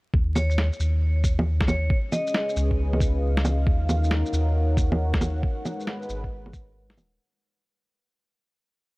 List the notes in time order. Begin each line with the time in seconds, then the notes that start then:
0.13 D#2, kick
0.35 C#5, low bongo, shaker
0.50 C#5, shaker
0.58 snare
0.73 shaker
0.80 D#2, shaker
1.24 kick, shaker
1.39 low bongo
1.61 kick, snare
1.68 C#5, low bongo, shaker
1.90 C#4, kick
1.99 G#4
2.12 D#5, low bongo, shaker
2.27 B4, shaker
2.34 snare
2.40 D#5
2.49 shaker
2.56 C#2, shaker
2.66 F5
2.71 kick
2.93 low bongo
3.00 kick, shaker
3.37 snare
3.45 low bongo, shaker
3.67 D#2 D#4, kick
3.76 A#4
3.89 C#5, low bongo, shaker
3.93 F#5
4.04 shaker
4.11 snare
4.26 shaker
4.33 D#2, shaker
4.77 kick, shaker
4.92 low bongo
5.14 kick, snare
5.21 low bongo, shaker
5.43 G#3, kick
5.61 B4
5.65 low bongo, shaker
5.80 shaker
5.87 snare
6.02 shaker
6.09 G#1, shaker
6.24 kick
6.46 low bongo
6.53 kick, shaker
6.90 snare
6.97 D#1, low bongo, shaker